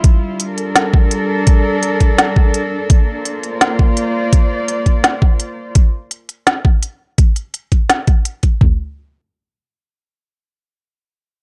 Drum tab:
HH |x-xxx-x-|x-xxx-x-|x-xxx-x-|x-xxx-x-|
SD |----o---|----o---|----o---|----o---|
FT |--------|--------|--------|--------|
BD |o----o--|o--o-o--|o----o--|o--o-o--|

HH |x-xxx-x-|xxxxxxxx|--------|--------|
SD |----o---|----o---|--------|--------|
FT |--------|--------|o-------|--------|
BD |o----o--|o--o-o-o|o-------|--------|